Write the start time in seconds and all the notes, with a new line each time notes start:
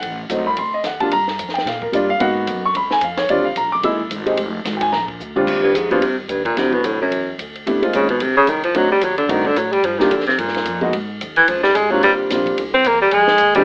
Already playing: F#5
0.02 A1, ride
0.29 C2 F#3 A3 C4 D#4, hi-hat pedal, ride
0.47 B5
0.57 D2 C6, ride
0.74 D#5
0.84 D#2 F#5, snare, hi-hat pedal, ride
1.00 G3 A#3 D4 F4 A5, kick, ride
1.11 G2 A#5, ride
1.28 snare
1.39 F2, hi-hat pedal, ride
1.49 snare
1.54 G5, ride
1.58 snare
1.65 A#2 F5, snare, ride
1.82 A#4, kick
1.92 G2 G3 A#3 D4 F4 D5, hi-hat pedal, ride
2.10 F5
2.19 G#2 A#3 B3 D#4 F#4 F#5, ride
2.47 F#2, hi-hat pedal, ride
2.65 C#6
2.74 C#2 B5, ride
2.91 G#5, snare
3.01 F2 F5, hi-hat pedal, ride
3.17 C#5, snare, ride
3.29 D#2 G3 C4 D4 F4 D5, ride
3.38 D2
3.45 A#1 F5
3.56 A#1 A#5, hi-hat pedal, ride
3.65 G1
3.72 D#1 D6
3.83 C2 G#3 A#3 D#4 E4 E6, ride
3.92 A#1
4.01 G#1
4.10 G#1, hi-hat pedal, ride
4.26 G#3 C4 D#4 G4, ride
4.37 F1, ride
4.65 G#1, snare, hi-hat pedal, ride
4.77 G5, ride
4.81 G#5, kick
4.92 A#1 A#5, snare
5.08 kick
5.20 D2, hi-hat pedal
5.36 D#2 G3 C4 D4 F4, mid tom
5.47 D#2, kick, crash
5.62 G2, muted upright bass stroke
5.74 F2 G#2, hi-hat pedal, ride
5.91 B2 G3 A#3 C4 D4 F4, ride
6.01 G2 C3, ride
6.19 D#2
6.28 D#2 G2, hi-hat pedal, ride
6.45 A#2, kick, ride
6.57 D2 C3 F#3 A3 C4 D4 E4, snare, ride
6.73 B2, kick
6.84 C2 A2, hi-hat pedal, ride
7.01 F#2
7.11 E2, ride
7.38 D2, hi-hat pedal, ride
7.55 ride
7.66 C#2 G3 A3 B3 D4 E4, ride
7.82 G#3 A#3 C4 D#4 F4, ride
7.93 G#1 C#3, hi-hat pedal, ride
8.09 B2, ride
8.20 A#1 C3, ride
8.37 C#3
8.47 C2 D#3, hi-hat pedal, ride
8.63 F3, ride
8.74 D2 F#3 A3 C4 D4 D#4 F#4, ride
8.91 G3
9.01 D#2 F#3, hi-hat pedal, ride
9.18 D3, ride
9.28 G2 D#3 A3 C4 D4 D#4 F#4, ride
9.45 D3, kick
9.56 A2 F#3, hi-hat pedal, ride
9.72 G3, ride
9.83 G2 F3, ride
9.99 D#3 G3 A#3 D4 F4 G4, snare
10.11 F2 D3, hi-hat pedal, ride
10.20 snare
10.26 C3, snare, ride
10.38 G2 A#2, ride
10.48 snare
10.54 snare, ride
10.65 F2, hi-hat pedal, ride
10.81 G#3 A#3 B3 D#4 F#4, kick
10.93 G#2, ride
11.21 D#2, hi-hat pedal, ride
11.36 E3, ride
11.48 C#2 F3, ride
11.63 G3, snare
11.75 G#1 G#3, hi-hat pedal, ride
11.91 F#3 G3 A#3 C4 D4 F4
12.03 D#2 G3, ride
12.30 A#1 G3 A#3 C4 D4 F4, snare, hi-hat pedal, ride
12.46 kick, ride
12.58 C2, ride
12.74 C4
12.84 E2 A#3, hi-hat pedal, ride
13.02 G3
13.11 F2 G#3, ride
13.27 snare
13.38 D#2, hi-hat pedal, ride
13.55 F3 G3 G#3 C4 D4 G4, ride